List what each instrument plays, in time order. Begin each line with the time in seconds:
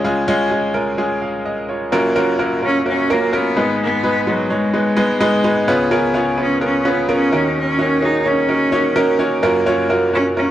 0.04 grand piano C#2 C#3 G#3 C#4 F4 G#4
0.28 grand piano G#3 C#4 F4 G#4
0.51 grand piano G#3 C#4 F4 G#4
0.74 grand piano G#3 C#4 F4 A#4
0.98 grand piano G#3 C#4 F4 G#4
1.22 grand piano G#4 F5
1.46 grand piano D#5
1.69 grand piano F4 C#5
1.92 grand piano F#1 F#2 A#3 C#4 F4 F#4 A#4
2.15 grand piano A#3 C#4 F4 F#4 A#4
2.39 grand piano A#3 C#4 F4 F#4 A#4
2.63 grand piano A#3 C#4 F4 F#4 A#4, cello C#4
2.86 grand piano A#3 C#4 F4 F#4 A#4, cello C#4
3.10 grand piano A#3 C#4 F4 F#4 A#4, cello A#3
3.33 grand piano A#3 C#4 F4 F#4 A#4, cello B3
3.56 grand piano G#1 G#2 G#3 B3 D#4 G#4 B4
3.82 cello B3
4.03 grand piano G#3 B3 D#4 G#4 B4
4.27 cello F#3, grand piano G#3 B3 D#4 G#4 B4
4.50 grand piano G#3 B3 D#4 G#4 C#5, cello G#3
4.73 grand piano G#3 B3 D#4 G#4 B4
4.96 grand piano G#3 B3 D#4 G#4 B4
5.20 grand piano G#3 B3 D#4 G#4 B4
5.44 grand piano G#3 B3 D#4 G#4 B4
5.68 grand piano C#2 C#3 B3 C#4 F4 G#4 B4
5.91 grand piano B3 C#4 F4 G#4 A#4
6.14 grand piano B3 C#4 F4 G#4 C#5
6.38 grand piano B3 C#4 F4 G#4 B4, cello C#4
6.61 grand piano B3 C#4 F4 G#4 A#4, cello C#4
6.85 grand piano B3 C#4 F4 G#4 B4, cello B3
7.09 grand piano B3 C#4 F4 G#4 A#4, cello C#4
7.32 grand piano D#2 D#3 A#3 C#4 D#4 F#4 A#4
7.58 cello C#4
7.79 grand piano A#3 C#4 D#4 F#4 C#5
8.02 grand piano A#3 C#4 D#4 F#4 G#4, cello D#4
8.25 grand piano A#3 C#4 D#4 F#4 C#5, cello C#4
8.49 grand piano A#3 C#4 D#4 F#4 A#4
8.72 grand piano A#3 C#4 D#4 F#4 C#5
8.96 grand piano A#3 C#4 D#4 F#4 A#4
9.19 grand piano A#3 C#4 D#4 F#4 C#5
9.43 grand piano F#1 F#2 A#3 C#4 F4 F#4 A#4
9.66 grand piano A#3 C#4 F4 F#4 C#5
9.90 grand piano A#3 C#4 F4 F#4 A#4
10.13 grand piano A#3 C#4 F4 F#4 A#4, cello C#4
10.37 grand piano A#3 C#4 F4 F#4 A#4, cello C#4